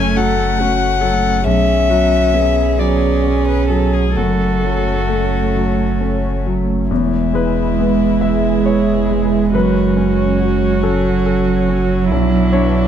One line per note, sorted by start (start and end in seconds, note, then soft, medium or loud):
0.00 1.48 F#1 medium
0.00 1.42 F#2 medium
0.00 0.17 F#3 soft
0.00 0.42 A3 soft
0.00 1.42 A3 medium
0.00 1.46 A3 medium
0.00 0.19 C#4 medium
0.00 1.46 C#4 medium
0.00 0.18 G#5 medium
0.16 0.85 F#3 soft
0.16 0.61 A4 medium
0.16 1.46 F#5 medium
0.59 1.29 C#4 soft
0.59 1.02 F#4 medium
1.01 1.46 F#3 soft
1.01 1.44 A4 medium
1.45 4.11 B1 medium
1.45 4.18 B1 medium
1.45 4.16 D3 medium
1.45 4.16 B3 medium
1.45 2.75 C#4 medium
1.45 1.91 G#4 medium
1.45 2.81 E5 medium
1.90 2.61 F#3 soft
1.90 2.36 F#4 medium
2.33 3.05 B3 soft
2.33 4.16 G#4 medium
2.78 3.51 F#3 soft
2.78 4.12 C#4 medium
2.78 3.47 D5 medium
3.24 3.97 C#4 soft
3.48 3.68 B4 medium
3.69 4.15 F#3 soft
3.69 3.95 A4 medium
3.93 4.18 G#4 medium
4.16 6.90 F#1 medium
4.16 6.87 F#2 soft
4.16 6.66 A3 soft
4.16 6.90 A3 soft
4.16 6.91 C#4 medium
4.16 6.45 F#4 medium
4.16 6.18 A4 medium
4.16 6.86 C#5 medium
4.64 5.36 F#3 soft
5.09 5.81 A3 soft
5.55 6.27 F#3 soft
6.01 6.73 C#4 soft
6.46 6.91 F#3 soft
6.90 9.55 E1 medium
6.90 9.50 E2 medium
6.90 10.84 G#3 medium
6.90 9.50 G#3 medium
6.90 9.50 E4 medium
6.90 9.50 B4 medium
7.34 8.04 G#3 soft
7.34 8.18 B4 medium
7.79 8.48 B3 soft
8.21 8.93 G#3 soft
8.21 9.50 G#4 medium
8.21 8.62 E5 medium
8.65 9.36 E4 soft
8.65 9.50 C#5 medium
9.11 9.54 G#3 soft
9.53 12.12 F#1 medium
9.53 12.06 F#2 medium
9.53 12.88 F#3 medium
9.53 12.13 C#4 medium
9.53 12.11 C#4 medium
9.53 12.07 F#4 medium
9.53 10.79 B4 medium
9.53 12.11 C#5 medium
9.97 10.66 C#4 soft
10.40 11.08 F#4 soft
10.82 12.88 F#3 medium
10.82 11.51 C#4 soft
10.82 11.24 A4 medium
11.26 11.94 A4 soft
11.69 12.11 C#4 soft
12.09 12.88 B1 medium
12.09 12.88 D4 medium
12.09 12.88 E4 medium
12.09 12.88 B4 medium
12.53 12.88 D4 soft
12.53 12.88 C#5 medium